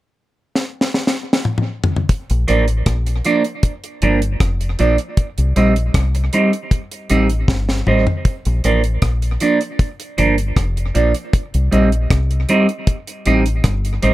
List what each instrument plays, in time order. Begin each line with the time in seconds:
0.55 snare
0.81 snare
0.94 snare
1.07 snare
1.33 snare
1.45 mid tom
1.58 mid tom
1.84 floor tom
1.96 floor tom
2.09 kick, closed hi-hat
2.30 fingered electric bass A#1, closed hi-hat
2.48 fingered electric bass A1, clean electric guitar F3 A#3 D4, closed hi-hat
2.68 closed hi-hat
2.86 fingered electric bass A#1, kick, cross-stick, closed hi-hat
3.07 muted clean electric guitar stroke, closed hi-hat
3.25 clean electric guitar F3 A#3 D4, closed hi-hat
3.44 closed hi-hat
3.63 kick, closed hi-hat
3.84 closed hi-hat
4.02 fingered electric bass G1, clean electric guitar F3 A#3 D4, closed hi-hat
4.22 closed hi-hat
4.40 fingered electric bass F1, kick, cross-stick, closed hi-hat
4.61 closed hi-hat
4.79 fingered electric bass A#1, clean electric guitar F3 A#3 D4, closed hi-hat
4.98 closed hi-hat
5.17 kick, closed hi-hat
5.38 fingered electric bass C2, closed hi-hat
5.56 fingered electric bass A#1, clean electric guitar G3 C4 D#4, closed hi-hat
5.76 closed hi-hat
5.94 fingered electric bass C2, kick, cross-stick, closed hi-hat
6.15 muted clean electric guitar stroke, closed hi-hat
6.33 clean electric guitar G3 C4 D#4, closed hi-hat
6.53 closed hi-hat
6.71 kick, closed hi-hat
6.91 closed hi-hat
7.10 fingered electric bass A1, clean electric guitar G3 C4 D#4, closed hi-hat
7.30 closed hi-hat
7.48 fingered electric bass G1, kick, snare
7.69 snare
7.87 fingered electric bass A1, clean electric guitar G3 C4 D#4, mid tom
8.07 floor tom
8.25 kick, closed hi-hat
8.45 fingered electric bass A#1, closed hi-hat
8.64 fingered electric bass A1, clean electric guitar F3 A#3 D4, closed hi-hat
8.84 closed hi-hat
9.02 fingered electric bass A#1, kick, cross-stick, closed hi-hat
9.22 closed hi-hat
9.40 clean electric guitar F3 A#3 D4, closed hi-hat
9.61 closed hi-hat
9.79 kick, closed hi-hat
10.00 closed hi-hat
10.18 fingered electric bass G1, clean electric guitar F3 A#3 D4, closed hi-hat
10.38 closed hi-hat
10.56 fingered electric bass F1, kick, cross-stick, closed hi-hat
10.77 closed hi-hat
10.95 fingered electric bass A#1, clean electric guitar F3 A#3 D4, closed hi-hat
11.14 closed hi-hat
11.33 kick, closed hi-hat
11.54 fingered electric bass C2, closed hi-hat
11.71 fingered electric bass A#1, clean electric guitar G3 C4 D#4, closed hi-hat
11.92 closed hi-hat
12.10 fingered electric bass C2, kick, cross-stick, closed hi-hat
12.31 closed hi-hat
12.49 clean electric guitar G3 C4 D#4, closed hi-hat
12.69 closed hi-hat
12.87 kick, closed hi-hat
13.07 closed hi-hat
13.26 fingered electric bass A1, clean electric guitar G3 C4 D#4, closed hi-hat
13.46 closed hi-hat
13.64 fingered electric bass G1, kick, cross-stick, closed hi-hat
13.85 closed hi-hat
14.02 fingered electric bass A1, clean electric guitar G3 C4 D#4, closed hi-hat